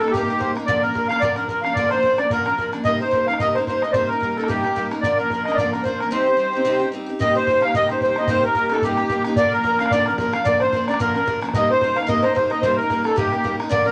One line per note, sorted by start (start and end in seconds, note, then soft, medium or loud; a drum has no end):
0.00 0.14 D#4 medium
0.00 0.12 A4 medium
0.00 0.13 A4 medium
0.00 0.13 A#4 medium
0.00 bodhran medium
0.04 0.14 A#3 soft
0.04 bodhran medium
0.11 0.29 C3 medium
0.11 0.29 G3 medium
0.11 0.52 G4 loud
0.11 0.41 G4 medium
0.11 bodhran medium
0.15 0.30 A#3 medium
0.15 0.29 D#4 medium
0.15 0.27 A#4 medium
0.28 0.39 A#3 medium
0.28 0.40 D#4 medium
0.28 0.40 A#4 medium
0.39 0.55 G3 medium
0.39 0.56 A#3 medium
0.39 0.56 D#4 medium
0.39 0.54 A#4 medium
0.39 0.54 C5 medium
0.39 bodhran medium
0.55 0.68 D#4 medium
0.55 0.67 A#4 medium
0.55 bodhran medium
0.59 0.68 A#3 medium
0.65 0.83 A#2 medium
0.65 0.83 D3 medium
0.65 0.84 F3 medium
0.65 0.84 A#3 medium
0.65 0.82 D5 loud
0.65 0.83 D5 medium
0.65 bodhran medium
0.70 0.83 D4 medium
0.70 0.82 A#4 medium
0.76 bodhran soft
0.82 0.94 A#3 soft
0.82 0.96 D4 medium
0.82 1.08 A#4 loud
0.82 1.08 A#4 medium
0.82 0.95 A#4 medium
0.87 0.93 F3 soft
0.94 1.10 F3 soft
0.94 1.10 A#3 medium
0.94 1.10 D4 medium
0.94 1.08 A#4 medium
0.94 bodhran medium
1.08 1.22 F3 soft
1.08 1.21 A#3 medium
1.08 1.22 D4 medium
1.08 1.22 A#4 medium
1.08 1.21 F5 loud
1.08 1.23 F5 medium
1.08 bodhran medium
1.16 bodhran medium
1.20 1.37 A#2 medium
1.20 1.37 D3 medium
1.20 1.38 F3 medium
1.20 1.37 A#3 medium
1.20 1.36 D4 medium
1.20 1.35 A#4 medium
1.20 1.35 D5 loud
1.20 1.38 D5 medium
1.20 bodhran medium
1.35 1.49 A#3 soft
1.35 1.49 D4 soft
1.35 1.44 A#4 medium
1.35 1.49 A#4 medium
1.35 1.47 A#4 medium
1.35 bodhran medium
1.40 1.48 F3 soft
1.46 1.65 F3 medium
1.46 1.62 A#4 medium
1.46 1.63 A#4 medium
1.46 bodhran medium
1.50 1.65 A#3 medium
1.50 1.65 D4 medium
1.50 1.62 A#4 medium
1.61 1.76 A#4 soft
1.61 1.74 F5 medium
1.61 1.76 F5 medium
1.61 bodhran medium
1.66 1.76 F3 soft
1.66 1.76 A#3 soft
1.66 1.76 D4 medium
1.74 1.92 A#2 medium
1.74 1.92 D3 medium
1.74 1.92 F3 medium
1.74 1.89 D5 loud
1.74 1.88 D5 medium
1.74 bodhran medium
1.78 1.92 A#3 medium
1.78 1.91 D4 medium
1.78 1.90 A#4 medium
1.84 1.91 A#4 medium
1.84 bodhran soft
1.90 2.04 A#3 soft
1.90 2.04 D4 soft
1.90 2.03 A#4 medium
1.90 2.19 C5 loud
1.90 2.02 C5 medium
1.90 bodhran medium
1.95 2.01 F3 soft
2.03 2.19 F3 medium
2.03 2.19 A#3 medium
2.03 2.18 D4 medium
2.03 2.16 A#4 medium
2.03 2.19 C5 medium
2.03 bodhran medium
2.18 2.32 A#3 medium
2.18 2.31 D4 medium
2.18 2.30 A#4 medium
2.18 2.31 D5 loud
2.18 2.32 D5 medium
2.18 bodhran medium
2.22 2.31 F3 soft
2.30 2.46 A#2 medium
2.30 2.46 D3 medium
2.30 2.47 F3 medium
2.30 2.47 A#3 medium
2.30 2.46 D4 medium
2.30 2.70 A#4 medium
2.30 2.71 A#4 medium
2.30 2.44 A#4 medium
2.30 bodhran medium
2.45 2.58 A#3 soft
2.45 2.59 D4 soft
2.45 2.58 A#4 medium
2.45 bodhran medium
2.50 2.57 F3 medium
2.58 2.74 F3 medium
2.58 2.74 A#3 medium
2.58 2.72 D4 medium
2.58 bodhran medium
2.62 2.71 A#4 medium
2.72 2.84 F3 soft
2.72 2.84 A#3 medium
2.72 2.85 D4 medium
2.72 2.85 A#4 medium
2.72 bodhran medium
2.84 3.00 C3 medium
2.84 3.00 G3 medium
2.84 3.01 A#3 medium
2.84 3.01 D#4 medium
2.84 2.99 A#4 medium
2.84 3.01 D#5 loud
2.84 2.99 D#5 loud
2.84 bodhran medium
2.92 bodhran soft
3.01 3.12 A#3 soft
3.01 3.13 D#4 medium
3.01 3.13 A#4 medium
3.01 3.08 C5 medium
3.01 3.26 C5 medium
3.09 3.27 G3 medium
3.09 3.28 A#3 medium
3.09 3.15 C5 medium
3.09 bodhran medium
3.14 3.29 D#4 medium
3.14 3.27 A#4 medium
3.14 3.27 C5 medium
3.27 3.41 D#4 medium
3.27 3.40 A#4 medium
3.27 3.39 F5 medium
3.27 3.38 F5 loud
3.27 bodhran medium
3.32 3.40 A#3 soft
3.32 bodhran medium
3.39 3.55 C3 medium
3.39 3.56 G3 medium
3.39 3.56 A#3 medium
3.39 3.56 D#4 medium
3.39 3.54 A#4 medium
3.39 3.55 D#5 medium
3.39 3.55 D#5 loud
3.39 bodhran medium
3.54 3.68 D#4 medium
3.54 3.67 A#4 medium
3.54 3.60 C5 medium
3.54 3.65 C5 medium
3.54 bodhran soft
3.59 3.67 A#3 soft
3.66 3.82 G3 medium
3.66 3.83 A#3 medium
3.66 3.83 D#4 medium
3.66 3.82 C5 medium
3.66 3.83 C5 medium
3.66 bodhran medium
3.70 3.81 A#4 medium
3.81 3.94 A#3 soft
3.81 3.94 D#4 medium
3.81 3.94 A#4 soft
3.81 3.91 D#5 medium
3.81 3.94 D#5 medium
3.81 bodhran medium
3.92 4.10 C3 medium
3.92 4.09 G3 medium
3.92 4.10 A#3 medium
3.92 4.10 D#4 medium
3.92 4.09 C5 loud
3.92 4.10 C5 medium
3.92 3.94 D5 medium
3.92 bodhran medium
3.96 4.09 A#4 medium
4.02 bodhran soft
4.08 4.37 A#4 loud
4.08 4.22 A#4 medium
4.08 4.50 A#4 medium
4.12 4.22 A#3 soft
4.12 4.23 D#4 soft
4.21 4.36 G3 medium
4.21 4.38 A#3 medium
4.21 4.38 D#4 medium
4.21 4.36 A#4 medium
4.21 bodhran medium
4.37 4.48 A#3 medium
4.37 4.49 D#4 medium
4.37 4.48 A4 medium
4.37 4.49 A#4 medium
4.37 bodhran medium
4.44 4.88 G4 loud
4.44 bodhran medium
4.48 4.64 C3 medium
4.48 4.64 G3 medium
4.48 4.64 A#3 medium
4.48 4.64 D#4 medium
4.48 4.89 G4 medium
4.48 4.62 A#4 medium
4.48 bodhran medium
4.64 4.75 A#3 soft
4.64 4.76 D#4 medium
4.64 4.76 A#4 medium
4.64 bodhran medium
4.75 4.91 G3 medium
4.75 4.91 A#3 medium
4.75 4.91 D#4 medium
4.75 4.90 A#4 medium
4.75 bodhran medium
4.91 5.05 A#3 soft
4.91 5.04 D#4 medium
4.91 5.03 A#4 medium
4.91 bodhran medium
5.01 5.19 A#2 medium
5.01 5.19 D3 medium
5.01 5.19 F3 medium
5.01 5.18 D5 medium
5.01 bodhran medium
5.06 5.20 A#3 medium
5.06 5.18 D4 medium
5.06 5.17 A#4 medium
5.11 bodhran soft
5.18 5.31 A#3 soft
5.18 5.31 D4 medium
5.18 5.43 A#4 loud
5.18 5.58 A#4 medium
5.18 5.30 A#4 soft
5.22 5.30 F3 soft
5.30 5.46 F3 medium
5.30 5.47 A#3 medium
5.30 5.47 D4 medium
5.30 bodhran medium
5.35 5.46 A#4 medium
5.44 5.58 A#4 medium
5.44 5.57 D#5 medium
5.44 bodhran medium
5.49 5.58 F3 soft
5.49 5.59 A#3 medium
5.49 5.59 D4 medium
5.49 bodhran medium
5.55 5.73 A#2 medium
5.55 5.73 D3 medium
5.55 5.70 D5 loud
5.55 5.73 D5 medium
5.55 bodhran medium
5.60 5.74 F3 medium
5.60 5.74 A#3 medium
5.60 5.73 D4 medium
5.60 5.72 A#4 medium
5.71 5.84 A#3 medium
5.71 5.85 D4 soft
5.71 5.84 A#4 medium
5.71 5.85 A#4 soft
5.71 5.84 A#4 medium
5.71 bodhran medium
5.77 5.82 F3 soft
5.83 5.99 F3 medium
5.83 6.00 A#3 medium
5.83 6.01 D4 medium
5.83 6.00 C5 medium
5.83 5.99 C5 medium
5.83 bodhran medium
5.87 5.99 A#4 medium
5.98 6.11 A#4 medium
5.98 6.12 A#4 soft
5.98 6.12 A#4 medium
5.98 bodhran medium
6.02 6.11 F3 soft
6.02 6.11 A#3 soft
6.02 6.11 D4 medium
6.11 6.26 C3 medium
6.11 6.27 G3 medium
6.11 6.27 C4 medium
6.11 6.27 D#4 medium
6.11 6.25 G4 medium
6.11 6.89 C5 loud
6.11 6.90 C5 medium
6.26 6.37 C4 soft
6.26 6.38 D#4 soft
6.26 6.38 G4 soft
6.37 6.53 G3 medium
6.37 6.54 C4 medium
6.37 6.54 D#4 medium
6.37 6.52 G4 medium
6.53 6.64 C4 medium
6.53 6.65 D#4 medium
6.53 6.65 G4 medium
6.65 6.81 C3 medium
6.65 6.81 G3 medium
6.65 6.81 C4 medium
6.65 6.80 D#4 loud
6.65 6.78 G4 medium
6.79 6.92 C4 soft
6.79 6.93 D#4 soft
6.79 6.92 G4 medium
6.92 7.08 G3 medium
6.92 7.08 C4 medium
6.92 7.08 D#4 medium
6.92 7.05 G4 medium
7.06 7.20 C4 soft
7.06 7.19 D#4 soft
7.06 7.19 G4 medium
7.19 7.35 C3 medium
7.19 7.35 G3 medium
7.19 7.36 A#3 medium
7.19 7.35 D#4 medium
7.19 7.34 G4 medium
7.19 7.34 D#5 loud
7.19 7.37 D#5 loud
7.19 bodhran medium
7.28 bodhran soft
7.35 7.47 A#3 soft
7.35 7.48 D#4 soft
7.35 7.47 G4 medium
7.35 7.61 C5 medium
7.35 7.64 C5 loud
7.47 7.63 G3 soft
7.47 7.63 A#3 medium
7.47 7.62 D#4 medium
7.47 7.60 G4 medium
7.47 bodhran medium
7.61 7.75 A#3 soft
7.61 7.75 D#4 medium
7.61 7.73 G4 medium
7.61 7.74 F5 loud
7.61 7.75 F5 loud
7.61 bodhran medium
7.68 bodhran medium
7.74 7.90 C3 medium
7.74 7.90 G3 medium
7.74 7.90 A#3 medium
7.74 7.90 D#4 medium
7.74 7.88 G4 medium
7.74 7.89 D#5 loud
7.74 bodhran medium
7.89 8.02 A#3 medium
7.89 8.02 D#4 medium
7.89 8.01 G4 medium
7.89 8.01 C5 medium
7.89 8.00 C5 medium
7.89 bodhran soft
8.01 8.17 G3 medium
8.01 8.18 A#3 medium
8.01 8.17 D#4 medium
8.01 8.29 C5 medium
8.01 8.18 C5 loud
8.01 bodhran medium
8.06 8.15 G4 medium
8.16 8.28 A#3 soft
8.16 8.28 D#4 medium
8.16 8.28 G4 soft
8.16 8.30 D#5 medium
8.16 bodhran medium
8.27 8.43 C3 medium
8.27 8.44 G3 medium
8.27 8.44 A#3 medium
8.27 8.44 D#4 medium
8.27 8.42 G4 medium
8.27 8.43 C5 loud
8.27 8.45 C5 loud
8.27 bodhran medium
8.36 bodhran soft
8.44 8.55 A#3 soft
8.44 8.56 D#4 medium
8.44 8.56 G4 medium
8.44 8.78 A#4 medium
8.44 8.72 A#4 loud
8.55 8.71 G3 medium
8.55 8.71 A#3 medium
8.55 8.70 D#4 medium
8.55 8.68 G4 medium
8.55 bodhran medium
8.69 8.83 D#4 medium
8.69 8.82 G4 medium
8.69 8.84 A4 medium
8.69 bodhran medium
8.73 8.84 A#3 soft
8.73 bodhran medium
8.79 8.84 A4 medium
8.79 bodhran medium
8.83 8.98 C3 medium
8.83 8.99 G3 medium
8.83 8.99 A#3 medium
8.83 8.98 D#4 medium
8.83 9.23 G4 medium
8.83 9.23 G4 loud
8.83 8.96 G4 medium
8.97 9.09 A#3 soft
8.97 9.11 D#4 soft
8.97 9.10 G4 medium
8.97 bodhran medium
9.09 9.25 G3 medium
9.09 9.26 A#3 medium
9.09 9.25 D#4 medium
9.09 9.23 G4 medium
9.09 bodhran medium
9.24 9.37 A#3 medium
9.24 9.38 D#4 medium
9.24 9.37 G4 medium
9.24 bodhran medium
9.36 9.52 A#2 medium
9.36 9.53 D3 medium
9.36 9.53 F3 medium
9.36 9.53 A#3 medium
9.36 9.52 D4 loud
9.36 9.50 A#4 medium
9.36 9.53 D5 loud
9.36 bodhran medium
9.45 bodhran soft
9.50 9.65 D4 soft
9.50 9.91 A#4 medium
9.50 9.64 A#4 medium
9.50 9.81 A#4 loud
9.55 9.62 F3 soft
9.55 9.64 A#3 medium
9.64 9.79 F3 medium
9.64 9.80 A#3 medium
9.64 9.79 D4 medium
9.64 9.78 A#4 medium
9.64 bodhran medium
9.79 9.92 F3 medium
9.79 9.92 A#3 medium
9.79 9.92 D4 medium
9.79 9.91 A#4 medium
9.79 9.92 F5 loud
9.79 bodhran medium
9.86 bodhran medium
9.91 10.07 A#2 medium
9.91 10.07 D3 medium
9.91 10.08 F3 medium
9.91 10.08 A#3 medium
9.91 10.08 D4 medium
9.91 10.06 A#4 medium
9.91 10.07 D5 loud
9.91 bodhran medium
10.06 10.19 D4 medium
10.06 10.16 A#4 medium
10.06 10.19 A#4 medium
10.06 bodhran medium
10.10 10.17 F3 soft
10.10 10.19 A#3 medium
10.18 10.34 F3 medium
10.18 10.34 A#3 medium
10.18 10.33 D4 medium
10.18 10.32 A#4 medium
10.18 10.34 A#4 medium
10.18 10.32 A#4 medium
10.18 bodhran loud
10.33 10.44 F3 soft
10.33 10.45 A#3 medium
10.33 10.46 D4 soft
10.33 10.45 A#4 medium
10.33 10.44 F5 medium
10.33 10.46 F5 medium
10.33 bodhran medium
10.45 10.60 A#2 medium
10.45 10.61 D3 medium
10.45 10.61 F3 medium
10.45 10.61 A#3 medium
10.45 10.61 D4 loud
10.45 10.60 A#4 medium
10.45 10.61 D5 loud
10.45 bodhran medium
10.53 bodhran soft
10.60 10.73 D4 medium
10.60 10.73 A#4 soft
10.60 10.86 C5 loud
10.60 10.89 C5 medium
10.60 bodhran medium
10.64 10.72 F3 soft
10.64 10.73 A#3 medium
10.72 10.88 F3 medium
10.72 10.89 A#3 medium
10.72 10.88 D4 medium
10.72 10.87 A#4 medium
10.72 bodhran medium
10.88 10.99 F3 medium
10.88 11.00 A#3 medium
10.88 11.00 D4 medium
10.88 11.00 A#4 medium
10.88 11.00 D5 medium
10.88 bodhran medium
10.94 bodhran medium
10.99 11.15 A#2 medium
10.99 11.15 D3 medium
10.99 11.15 F3 medium
10.99 11.16 A#3 medium
10.99 11.14 D4 medium
10.99 11.40 A#4 medium
10.99 11.40 A#4 loud
10.99 11.13 A#4 medium
10.99 bodhran medium
11.14 11.24 F3 soft
11.14 11.26 A#3 medium
11.14 11.26 D4 soft
11.14 11.26 A#4 medium
11.14 bodhran medium
11.25 11.41 F3 medium
11.25 11.42 A#3 medium
11.25 11.41 D4 medium
11.25 11.40 A#4 medium
11.25 bodhran medium
11.41 11.55 F3 medium
11.41 11.54 A#3 medium
11.41 11.54 D4 medium
11.41 11.54 A#4 medium
11.41 bodhran medium
11.49 bodhran medium
11.54 11.70 C3 medium
11.54 11.70 G3 medium
11.54 11.70 A#3 medium
11.54 11.69 D#4 medium
11.54 11.68 A#4 medium
11.54 11.68 D#5 medium
11.54 11.71 D#5 loud
11.54 bodhran loud
11.62 bodhran soft
11.69 11.82 A#3 soft
11.69 11.82 D#4 soft
11.69 11.81 A#4 soft
11.69 11.98 C5 medium
11.69 11.98 C5 loud
11.81 11.97 G3 medium
11.81 11.97 A#3 medium
11.81 11.97 D#4 medium
11.81 11.95 A#4 medium
11.81 bodhran medium
11.96 12.07 A#3 medium
11.96 12.07 D#4 medium
11.96 12.08 A#4 medium
11.96 12.08 F5 loud
11.96 12.09 F5 medium
11.96 bodhran medium
12.03 bodhran medium
12.07 12.23 C3 medium
12.07 12.23 G3 medium
12.07 12.24 A#3 medium
12.07 12.23 D#4 medium
12.07 12.21 A#4 medium
12.07 12.24 D#5 loud
12.07 12.36 D#5 medium
12.07 bodhran medium
12.22 12.35 A#3 soft
12.22 12.36 D#4 medium
12.22 12.35 A#4 medium
12.22 12.33 C5 medium
12.22 bodhran medium
12.35 12.50 G3 medium
12.35 12.51 A#3 medium
12.35 12.51 D#4 medium
12.35 12.49 A#4 medium
12.35 12.51 C5 medium
12.35 bodhran medium
12.50 12.63 D#4 soft
12.50 12.62 A#4 medium
12.50 12.63 D#5 medium
12.50 bodhran medium
12.54 12.63 A#3 soft
12.62 12.78 C3 medium
12.62 12.78 G3 medium
12.62 12.79 A#3 medium
12.62 12.79 D#4 medium
12.62 12.77 A#4 medium
12.62 12.76 C5 loud
12.62 12.78 C5 medium
12.62 bodhran medium
12.70 bodhran soft
12.75 13.02 A#4 medium
12.75 13.06 A#4 loud
12.75 12.90 A#4 medium
12.81 12.91 A#3 soft
12.81 12.91 D#4 soft
12.90 13.05 G3 medium
12.90 13.06 A#3 medium
12.90 13.05 D#4 medium
12.90 bodhran medium
12.94 13.03 A#4 medium
13.04 13.16 A#3 medium
13.04 13.16 D#4 medium
13.04 13.17 A4 medium
13.04 13.16 A4 medium
13.04 13.16 A#4 medium
13.04 bodhran medium
13.11 bodhran medium
13.16 13.32 C3 medium
13.16 13.32 G3 medium
13.16 13.32 A#3 medium
13.16 13.32 D#4 medium
13.16 13.56 G4 loud
13.16 13.56 G4 medium
13.16 13.30 A#4 medium
13.16 bodhran medium
13.31 13.43 A#3 soft
13.31 13.44 D#4 soft
13.31 13.43 A#4 medium
13.31 bodhran medium
13.44 13.59 G3 medium
13.44 13.60 A#3 medium
13.44 13.60 D#4 medium
13.44 13.58 A#4 medium
13.44 bodhran medium
13.60 13.70 A#3 medium
13.60 13.71 D#4 medium
13.60 13.70 A#4 medium
13.60 bodhran medium
13.69 13.85 A#2 medium
13.69 13.86 D3 medium
13.69 13.86 F3 medium
13.69 13.87 A#3 medium
13.69 13.85 D4 medium
13.69 13.84 A#4 loud
13.69 13.86 D5 loud
13.69 13.86 D5 medium
13.69 bodhran medium
13.79 bodhran soft
13.85 13.92 A#3 medium
13.85 13.92 D4 medium
13.85 13.92 A#4 medium
13.85 13.92 A#4 loud
13.85 13.92 A#4 medium